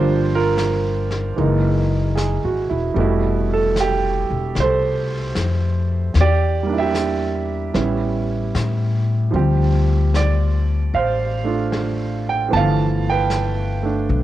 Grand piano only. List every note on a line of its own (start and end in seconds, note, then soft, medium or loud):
0.00 1.37 F3 soft
0.00 1.38 G3 soft
0.00 1.37 A#3 soft
0.00 1.40 D4 medium
0.00 0.34 F4 medium
0.00 0.36 C5 medium
0.35 1.35 F4 soft
0.35 2.69 A#4 medium
1.36 2.96 E3 soft
1.36 2.97 G#3 soft
1.36 2.97 A#3 soft
1.36 2.97 D#4 medium
2.16 2.66 G#4 soft
2.45 2.85 F#4 soft
2.70 2.99 E4 soft
2.94 6.15 B2 medium
2.94 6.13 G3 medium
2.94 6.14 A3 medium
3.00 6.16 E4 medium
3.53 3.78 A4 medium
3.80 4.60 G4 medium
4.60 6.14 A4 medium
4.60 6.13 C5 medium
6.21 6.78 G4 medium
6.21 6.73 D5 medium
6.63 7.71 G3 soft
6.63 7.72 A#3 soft
6.69 7.74 D4 soft
6.73 7.74 E4 soft
6.78 9.09 G4 medium
6.78 9.08 E5 medium
7.74 9.30 G3 soft
7.74 9.34 B3 soft
7.74 9.34 C#4 soft
7.74 9.34 E4 soft
9.31 12.47 F3 soft
9.31 12.51 G3 soft
9.31 12.52 C4 soft
9.36 12.53 G4 medium
10.16 10.97 D5 medium
10.95 12.50 C5 medium
10.95 11.69 F5 medium
11.44 12.48 A3 soft
11.44 12.51 D4 soft
11.44 12.52 F4 soft
12.29 12.54 G5 medium
12.49 14.23 E3 medium
12.49 14.23 F3 soft
12.49 13.82 A3 soft
12.49 14.23 B3 soft
12.53 14.09 F5 medium
12.53 13.08 A5 medium
13.10 14.23 B4 medium
13.10 14.23 G5 medium
13.83 14.23 A3 soft
13.83 14.23 D4 soft